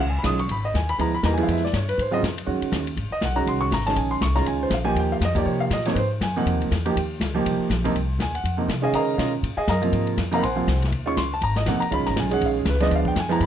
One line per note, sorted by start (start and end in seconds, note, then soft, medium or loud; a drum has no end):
0.00 0.23 C#2 medium
0.00 0.08 F5 medium
0.09 0.17 G#5 medium
0.19 0.25 B5 medium
0.23 0.48 B1 medium
0.23 0.37 D#3 medium
0.23 0.37 G#3 medium
0.23 0.37 C#4 medium
0.23 0.37 F4 medium
0.23 0.39 D#6 medium
0.23 kick soft
0.23 snare medium
0.23 hi-hat pedal medium
0.23 ride medium
0.39 0.50 C#6 medium
0.39 ride soft
0.49 0.73 G#1 medium
0.49 0.64 B5 medium
0.49 kick soft
0.49 ride medium
0.65 0.75 D#5 medium
0.74 0.98 D#2 medium
0.74 0.89 G#5 medium
0.74 kick soft
0.74 snare medium
0.74 hi-hat pedal medium
0.74 ride medium
0.89 0.99 B5 loud
0.89 ride medium
0.98 1.23 D2 medium
0.98 1.12 F3 medium
0.98 1.12 G#3 medium
0.98 1.12 B3 medium
0.98 1.12 E4 medium
0.98 1.14 A#5 medium
0.98 kick soft
0.98 ride medium
1.15 1.24 B5 medium
1.23 1.47 E2 medium
1.23 1.37 E3 medium
1.23 1.37 G3 medium
1.23 1.36 A#3 medium
1.23 1.37 D#4 medium
1.23 1.33 A#5 medium
1.23 kick soft
1.23 snare medium
1.23 hi-hat pedal medium
1.23 ride medium
1.34 1.60 F3 medium
1.34 1.60 G#3 medium
1.34 1.41 G#5 medium
1.34 ride soft
1.38 1.60 B3 medium
1.38 1.60 E4 medium
1.43 1.50 F5 medium
1.48 1.72 F2 medium
1.48 1.64 E5 medium
1.48 kick soft
1.48 ride medium
1.57 snare soft
1.65 1.74 D5 medium
1.65 snare soft
1.73 1.97 G2 medium
1.73 1.88 C#5 medium
1.73 kick soft
1.73 snare medium
1.73 hi-hat pedal medium
1.73 ride medium
1.89 1.99 B4 medium
1.89 ride medium
1.98 2.22 G#2 medium
1.98 2.14 C5 medium
1.98 kick soft
1.98 ride medium
2.11 2.21 C#3 medium
2.11 2.21 F#3 medium
2.11 2.22 C4 medium
2.11 2.22 F4 medium
2.11 2.20 D#5 medium
2.22 2.47 F2 medium
2.22 kick soft
2.22 snare medium
2.22 hi-hat pedal medium
2.22 ride medium
2.38 ride medium
2.46 2.61 F#2 medium
2.46 2.84 D#3 medium
2.46 2.84 G#3 medium
2.46 2.84 C#4 medium
2.46 2.84 F#4 medium
2.46 kick soft
2.62 muted upright bass stroke soft
2.62 ride soft
2.72 2.96 D#2 medium
2.72 kick soft
2.72 snare medium
2.72 hi-hat pedal medium
2.72 ride medium
2.87 ride medium
2.97 3.10 G#1 medium
2.97 kick soft
2.97 ride medium
3.11 3.22 D#5 medium
3.11 muted upright bass stroke soft
3.21 3.46 B1 medium
3.21 3.37 F#5 medium
3.21 kick soft
3.21 snare medium
3.21 hi-hat pedal medium
3.21 ride medium
3.36 3.70 D#3 medium
3.36 3.70 G#3 medium
3.36 3.70 C#4 medium
3.36 3.70 F#4 medium
3.36 3.47 A#5 medium
3.46 3.70 C2 medium
3.46 3.62 C6 medium
3.46 kick soft
3.46 ride medium
3.61 3.71 C#6 loud
3.71 3.96 G#1 medium
3.71 3.87 A#5 medium
3.71 kick soft
3.71 snare medium
3.71 hi-hat pedal soft
3.71 ride medium
3.86 4.20 D#3 medium
3.86 4.20 G#3 medium
3.86 4.20 C#4 medium
3.86 4.20 G#4 medium
3.86 3.97 A5 loud
3.86 snare soft
3.86 ride medium
3.96 4.20 A#1 medium
3.96 4.11 G#5 medium
3.96 kick soft
3.96 ride medium
4.11 4.21 C6 loud
4.21 4.45 C2 medium
4.21 4.36 C#6 loud
4.21 kick soft
4.21 snare medium
4.21 hi-hat pedal medium
4.21 ride medium
4.35 4.69 D#3 medium
4.35 4.69 G#3 medium
4.35 4.69 C#4 medium
4.35 4.69 F4 medium
4.35 4.46 A#5 medium
4.35 snare soft
4.46 4.70 C#2 medium
4.46 4.61 G#5 medium
4.46 kick soft
4.46 ride medium
4.63 4.72 C5 medium
4.70 4.94 A#1 medium
4.70 4.87 F5 medium
4.70 kick soft
4.70 snare medium
4.70 hi-hat pedal medium
4.70 ride medium
4.84 5.18 F3 medium
4.84 5.19 A#3 medium
4.84 5.18 D#4 medium
4.84 5.19 G4 loud
4.84 4.96 G#5 loud
4.95 5.20 D#2 medium
4.95 kick soft
4.95 ride medium
4.99 5.12 G5 medium
5.12 5.22 F5 medium
5.20 5.45 F2 medium
5.20 kick soft
5.20 snare medium
5.20 hi-hat pedal medium
5.20 ride medium
5.25 5.37 D#5 medium
5.35 5.68 F3 medium
5.35 5.69 A#3 medium
5.35 5.69 D#4 medium
5.35 5.69 G4 medium
5.35 5.47 D5 medium
5.35 kick medium
5.35 ride medium
5.46 5.70 C3 medium
5.46 5.60 C#5 medium
5.46 kick soft
5.60 5.71 F5 loud
5.70 5.95 A#2 loud
5.70 5.86 D#5 medium
5.70 kick soft
5.70 snare medium
5.70 hi-hat pedal medium
5.70 ride medium
5.80 snare soft
5.85 5.95 C3 medium
5.85 5.95 F3 medium
5.85 5.95 A#3 medium
5.85 5.96 D#4 medium
5.85 5.96 C#5 medium
5.85 snare medium
5.85 ride medium
5.93 6.20 G#2 medium
5.93 5.95 B4 medium
5.93 kick soft
5.93 ride medium
5.98 6.06 C5 medium
6.21 6.45 F#2 medium
6.21 6.36 G#5 loud
6.21 kick soft
6.21 snare medium
6.21 hi-hat pedal medium
6.21 ride medium
6.36 6.69 C3 medium
6.36 6.69 F3 medium
6.36 6.69 A#3 medium
6.36 6.69 D#4 medium
6.36 6.59 F#5 medium
6.46 6.54 F2 medium
6.46 kick soft
6.46 ride medium
6.54 6.61 D#2 medium
6.62 6.70 C2 medium
6.62 ride soft
6.71 6.95 E2 loud
6.71 kick soft
6.71 snare medium
6.71 hi-hat pedal medium
6.71 ride medium
6.85 6.95 F3 medium
6.85 6.94 A#3 medium
6.85 6.95 D#4 medium
6.85 6.95 G4 loud
6.85 ride medium
6.96 7.19 D#2 medium
6.96 kick soft
6.96 ride medium
7.20 7.44 C#2 medium
7.20 kick soft
7.20 snare medium
7.20 hi-hat pedal medium
7.20 ride medium
7.34 7.68 F3 medium
7.34 7.68 A#3 medium
7.34 7.68 D#4 medium
7.34 7.68 G4 medium
7.45 7.58 C2 medium
7.45 kick soft
7.45 ride medium
7.58 muted upright bass stroke soft
7.70 7.94 A#1 loud
7.70 kick soft
7.70 snare medium
7.70 hi-hat pedal medium
7.70 ride medium
7.84 7.94 C3 medium
7.84 7.93 F3 medium
7.84 7.94 A#3 medium
7.84 7.94 D#4 loud
7.84 ride medium
7.95 8.18 C2 medium
7.95 kick soft
7.95 ride medium
8.19 8.43 D#2 medium
8.19 8.35 G#5 loud
8.19 kick soft
8.19 snare medium
8.19 hi-hat pedal medium
8.19 ride medium
8.35 8.57 F#5 medium
8.35 ride soft
8.44 8.68 F2 medium
8.44 kick soft
8.44 ride medium
8.57 8.68 C3 medium
8.57 8.67 F3 medium
8.57 8.68 A#3 medium
8.57 8.68 D#4 medium
8.68 8.92 C3 loud
8.68 kick soft
8.68 snare medium
8.68 hi-hat pedal medium
8.68 ride medium
8.82 9.16 D#3 medium
8.82 9.16 G#3 medium
8.82 9.16 C#4 medium
8.82 9.16 G#4 medium
8.82 8.93 D#5 medium
8.82 8.94 F5 medium
8.82 8.94 G#5 medium
8.93 9.17 C#3 medium
8.93 9.31 A#4 medium
8.93 9.31 D#5 medium
8.93 9.31 F5 medium
8.93 9.31 A#5 loud
8.93 kick soft
8.93 ride medium
9.17 9.42 B2 medium
9.17 9.31 D#3 medium
9.17 9.31 G#3 medium
9.17 9.31 C#4 medium
9.17 9.31 F4 medium
9.17 kick soft
9.17 snare medium
9.17 hi-hat pedal medium
9.17 ride medium
9.43 9.56 A#2 medium
9.43 kick soft
9.43 ride medium
9.57 9.68 G#4 medium
9.57 9.68 D#5 medium
9.57 9.68 F5 medium
9.57 9.68 G#5 medium
9.57 muted upright bass stroke soft
9.68 9.92 F#2 loud
9.68 10.06 A#4 medium
9.68 10.06 D#5 medium
9.68 10.05 F5 medium
9.68 10.05 A#5 medium
9.68 kick soft
9.68 snare medium
9.68 hi-hat pedal medium
9.68 ride medium
9.82 10.15 C3 medium
9.82 10.15 F3 medium
9.82 10.15 A#3 medium
9.82 10.15 F4 medium
9.82 ride soft
9.92 10.17 G#2 medium
9.92 kick soft
9.92 ride medium
10.07 ride soft
10.17 10.41 F2 medium
10.17 kick soft
10.17 snare medium
10.17 hi-hat pedal medium
10.17 ride medium
10.31 10.41 C3 medium
10.31 10.41 F3 medium
10.31 10.42 A#3 medium
10.31 10.42 D#4 medium
10.31 10.44 A#4 medium
10.31 10.44 F5 medium
10.31 10.41 F#5 medium
10.31 10.43 A#5 loud
10.31 ride soft
10.39 10.66 A#1 medium
10.39 10.41 B5 medium
10.39 kick soft
10.43 10.80 C5 medium
10.43 10.79 F#5 medium
10.43 10.79 G#5 medium
10.43 10.79 C6 medium
10.43 ride medium
10.56 10.66 C3 medium
10.56 10.66 F3 medium
10.56 10.66 A#3 medium
10.56 10.66 F4 medium
10.67 10.91 C2 loud
10.67 kick soft
10.67 snare medium
10.67 hi-hat pedal medium
10.67 ride medium
10.76 snare soft
10.82 snare medium
10.82 ride medium
10.91 11.16 D#2 medium
10.91 kick soft
10.91 ride medium
11.06 11.16 D#3 medium
11.06 11.16 G#3 medium
11.06 11.16 C#4 medium
11.06 11.16 F4 medium
11.06 11.17 C#6 loud
11.17 11.41 C#2 medium
11.17 11.31 C6 medium
11.17 kick soft
11.17 snare medium
11.17 hi-hat pedal medium
11.17 ride medium
11.34 11.43 A5 medium
11.41 11.66 G#1 medium
11.41 11.57 A#5 loud
11.41 kick soft
11.41 ride medium
11.56 11.67 D#5 medium
11.56 snare medium
11.56 ride soft
11.66 11.80 A#1 loud
11.66 11.80 C3 medium
11.66 11.80 F3 medium
11.66 11.80 A#3 medium
11.66 11.80 D#4 medium
11.66 11.81 F#5 medium
11.66 kick soft
11.66 snare medium
11.66 hi-hat pedal medium
11.66 ride medium
11.80 11.91 A#5 loud
11.80 muted upright bass stroke soft
11.80 ride medium
11.91 12.00 C#2 medium
11.91 12.28 D#3 medium
11.91 12.27 G#3 medium
11.91 12.28 C#4 medium
11.91 12.28 F4 medium
11.91 12.06 B5 loud
11.91 kick soft
11.91 ride medium
12.00 12.07 B1 medium
12.06 12.16 G#1 medium
12.06 12.16 A#5 medium
12.06 snare soft
12.06 ride soft
12.16 12.40 B1 medium
12.16 12.32 G#5 medium
12.16 kick soft
12.16 snare medium
12.16 hi-hat pedal medium
12.16 ride medium
12.31 12.64 D#3 medium
12.31 12.64 G#3 medium
12.31 12.64 C#4 medium
12.31 12.57 G#4 medium
12.31 12.42 F#5 medium
12.31 ride soft
12.41 12.65 A#1 medium
12.41 kick soft
12.41 ride medium
12.46 12.58 F5 medium
12.59 12.67 G#4 medium
12.65 12.90 C#2 loud
12.65 12.82 B4 medium
12.65 kick soft
12.65 snare medium
12.65 hi-hat pedal medium
12.65 ride medium
12.74 snare soft
12.80 13.13 F3 medium
12.80 13.14 G#3 medium
12.80 13.14 B3 medium
12.80 13.14 D4 medium
12.80 12.92 D#5 medium
12.80 snare medium
12.80 ride medium
12.90 13.15 D2 medium
12.90 kick soft
12.90 ride medium
12.96 13.07 F5 loud
13.05 13.17 G5 medium
13.05 kick medium
13.15 13.40 F2 medium
13.15 kick soft
13.15 snare medium
13.15 hi-hat pedal medium
13.15 ride medium
13.20 13.32 G#5 medium
13.29 13.46 F3 medium
13.29 13.46 G#3 medium
13.29 13.46 B3 medium
13.29 13.46 E4 medium
13.29 13.41 A#5 medium
13.29 ride soft
13.40 13.46 G2 medium
13.40 13.46 B5 loud
13.40 kick soft
13.40 ride medium